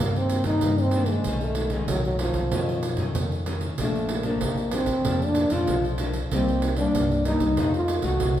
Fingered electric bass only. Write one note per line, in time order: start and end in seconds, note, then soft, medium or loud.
0.00 0.40 G2 medium
0.46 0.60 G2 medium
0.63 1.17 G2 medium
1.26 1.80 B1 medium
1.90 2.30 B1 medium
2.35 2.49 B1 medium
2.53 2.93 F#2 medium
2.98 3.12 F#2 medium
3.15 3.69 F2 medium
3.79 4.33 A#1 medium
4.42 4.83 A#1 medium
4.87 5.02 A#1 medium
5.06 5.46 F2 medium
5.51 5.65 F2 medium
5.69 6.23 B1 medium
6.32 6.86 C2 medium
6.95 7.35 C2 medium
7.41 7.55 C2 medium
7.57 7.98 F2 medium
8.04 8.18 C2 medium
8.22 8.40 C2 medium